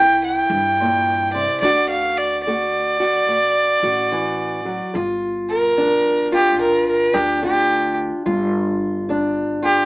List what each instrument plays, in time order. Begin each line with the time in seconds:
Already playing: upright bass C2, steel-string acoustic guitar C3 E4, fiddle G5
0.24 fiddle G5
0.50 upright bass G2
0.81 steel-string acoustic guitar A#2
1.33 steel-string acoustic guitar C3, fiddle D5
1.61 upright bass D2, steel-string acoustic guitar D3 F#4, fiddle D5
1.89 fiddle F5
2.18 fiddle D5
2.43 fiddle D5
2.47 steel-string acoustic guitar A3 F#4
3.00 steel-string acoustic guitar F#4
3.28 upright bass A1, steel-string acoustic guitar A2
3.83 upright bass A1, steel-string acoustic guitar F#4
4.12 steel-string acoustic guitar E3
4.65 steel-string acoustic guitar F#3
4.94 upright bass G1, steel-string acoustic guitar G2 F4
5.50 fiddle A#4
5.77 steel-string acoustic guitar D3 D4
6.32 steel-string acoustic guitar F4, fiddle G4
6.59 upright bass D2, steel-string acoustic guitar G2, fiddle A#4
6.89 fiddle A#4
7.13 upright bass D2, steel-string acoustic guitar D4, fiddle G4
7.43 steel-string acoustic guitar D3 F4, fiddle G4
8.26 upright bass G1, steel-string acoustic guitar G2 F4
9.09 steel-string acoustic guitar D3 D4
9.63 steel-string acoustic guitar F4, fiddle G4